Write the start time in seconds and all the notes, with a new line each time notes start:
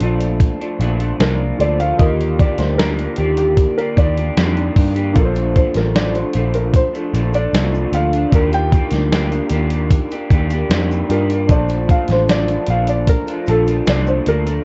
Already playing: D4 F4 C5 D5 A5
0.00 A#1 A#2 F3 A3 D4, closed hi-hat
0.20 closed hi-hat
0.40 kick, closed hi-hat
0.61 F3 A3 D4, closed hi-hat
0.80 A#1 A#2 F3 A3 D4, closed hi-hat
1.00 F3 A3 D4, closed hi-hat
1.20 C2 A#2 F3 D4 A#4, snare, closed hi-hat
1.58 D2 A#2 F3 A3 D4 F4 A4 C5 D5, closed hi-hat
1.80 F3 A3 D4 F5, closed hi-hat
1.96 D#2 D3 F4 G4 D#5, kick, closed hi-hat
2.00 D#3 A#3 G4 A#4
2.21 closed hi-hat
2.39 D#3 A#3 D4 G4 D5, kick, closed hi-hat
2.58 D2 C5, snare, closed hi-hat
2.78 A#3 D4 G4 A#4, snare, closed hi-hat
2.99 closed hi-hat
3.16 D#2 D#3 A#3 D4 G4, closed hi-hat
3.37 G4, closed hi-hat
3.57 kick, closed hi-hat
3.78 A#3 D4 G4 A#4, closed hi-hat
3.97 D#2 D#3 A#3 D4 G4 D5, kick, closed hi-hat
4.17 A#3 D4 G4, closed hi-hat
4.37 F2 D#3 A#3 D4 G4, snare, closed hi-hat
4.57 closed hi-hat
4.76 G2 D#3 A#3 D4 G4, kick, open hi-hat
4.95 A#3 D4 G4, closed hi-hat
5.13 A#1 A#2 F3 A3 D4 F4 A4, kick, closed hi-hat, shaker
5.18 A#4
5.25 C5
5.35 closed hi-hat, shaker
5.54 A#2 F3 A3 D4 C5, kick, closed hi-hat, shaker
5.74 A1 A#4, snare, closed hi-hat, shaker
5.95 F3 A3 D4 D5, snare, closed hi-hat, shaker
6.14 C5, closed hi-hat, shaker
6.33 A#1 A#2 F3 A3 D4, closed hi-hat, shaker
6.54 A#4, closed hi-hat, shaker
6.74 C5, kick, closed hi-hat, shaker
6.93 F3 A3 D4, closed hi-hat, shaker
7.13 A#1 A#2 F3 A3 D4, closed hi-hat, shaker
7.33 F3 A3 D4 D5, closed hi-hat, shaker
7.53 C2 A#2 F3 A3 D4, snare, closed hi-hat, shaker
7.75 shaker
7.92 D2 A#2 F3 A3 D4 F5, closed hi-hat, shaker
8.13 F3 A3 D4, closed hi-hat, shaker
8.30 D#2 D#3 A#3 D4 F4 F#4 G4, kick, closed hi-hat, shaker
8.35 A#4
8.39 G4
8.52 G5, closed hi-hat, shaker
8.72 D#3 A#3 D4 G4, kick, closed hi-hat, shaker
8.91 D2, snare, closed hi-hat, shaker
9.12 A#3 D4 G4, snare, closed hi-hat, shaker
9.32 closed hi-hat, shaker
9.49 D#2 D#3 A#3 D4, closed hi-hat, shaker
9.54 G4
9.70 closed hi-hat, shaker
9.90 kick, closed hi-hat, shaker
10.11 A#3 D4 G4, closed hi-hat, shaker
10.30 D#2 D#3 A#3 D4 G4, kick, closed hi-hat, shaker
10.50 D4 G4, closed hi-hat, shaker
10.54 A#3
10.69 F2 D#3 A#3 D4 G4, snare, closed hi-hat, shaker
10.91 shaker
11.09 G2 D#3 A#3 D4 F4 G4 A#4, closed hi-hat, shaker
11.30 A#3 D4 G4, closed hi-hat, shaker
11.47 A#1 A#2 F3 A3 D4 F4 A5, kick, closed hi-hat, shaker
11.51 C5 D5
11.69 closed hi-hat, shaker
11.89 A#2 F3 A3 D4 F5, kick, closed hi-hat, shaker
12.08 A1, snare, closed hi-hat, shaker
12.12 C5
12.29 F3 A3 D4 D5, snare, closed hi-hat, shaker
12.48 closed hi-hat, shaker
12.67 A#1 A#2 F3 A3 F5, closed hi-hat, shaker
12.71 D4
12.87 D5, closed hi-hat, shaker
13.07 A#4, kick, closed hi-hat, shaker
13.27 F3 A3 D4, closed hi-hat, shaker
13.46 A#1 A#2 F3 A3 D4 A4, closed hi-hat, shaker
13.67 F3 A3 D4, closed hi-hat, shaker
13.86 C2 A#2 F3 A3 D4 D5, snare, closed hi-hat, shaker
14.06 C5, shaker
14.26 D2 A#2 F3 A3 D4 A#4, closed hi-hat, shaker
14.45 F3 A3 D4, closed hi-hat, shaker